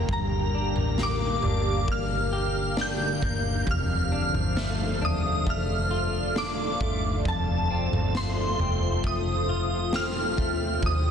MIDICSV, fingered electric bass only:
0, 0, Header, 1, 2, 480
1, 0, Start_track
1, 0, Tempo, 895522
1, 48, Time_signature, 4, 2, 24, 8
1, 5954, End_track
2, 0, Start_track
2, 0, Title_t, "Fingered electric bass"
2, 0, Program_c, 0, 33
2, 48, Note_on_c, 0, 31, 88
2, 390, Note_off_c, 0, 31, 0
2, 410, Note_on_c, 0, 33, 74
2, 751, Note_off_c, 0, 33, 0
2, 769, Note_on_c, 0, 31, 88
2, 996, Note_off_c, 0, 31, 0
2, 1009, Note_on_c, 0, 31, 91
2, 1707, Note_off_c, 0, 31, 0
2, 1729, Note_on_c, 0, 31, 74
2, 1956, Note_off_c, 0, 31, 0
2, 1969, Note_on_c, 0, 29, 86
2, 2310, Note_off_c, 0, 29, 0
2, 2328, Note_on_c, 0, 31, 69
2, 2691, Note_off_c, 0, 31, 0
2, 2691, Note_on_c, 0, 29, 80
2, 2918, Note_off_c, 0, 29, 0
2, 2933, Note_on_c, 0, 29, 81
2, 3629, Note_off_c, 0, 29, 0
2, 3647, Note_on_c, 0, 31, 70
2, 3875, Note_off_c, 0, 31, 0
2, 3890, Note_on_c, 0, 29, 82
2, 4231, Note_off_c, 0, 29, 0
2, 4246, Note_on_c, 0, 31, 68
2, 4589, Note_off_c, 0, 31, 0
2, 4606, Note_on_c, 0, 29, 83
2, 4835, Note_off_c, 0, 29, 0
2, 4846, Note_on_c, 0, 29, 80
2, 5564, Note_off_c, 0, 29, 0
2, 5564, Note_on_c, 0, 38, 71
2, 5793, Note_off_c, 0, 38, 0
2, 5806, Note_on_c, 0, 39, 101
2, 5954, Note_off_c, 0, 39, 0
2, 5954, End_track
0, 0, End_of_file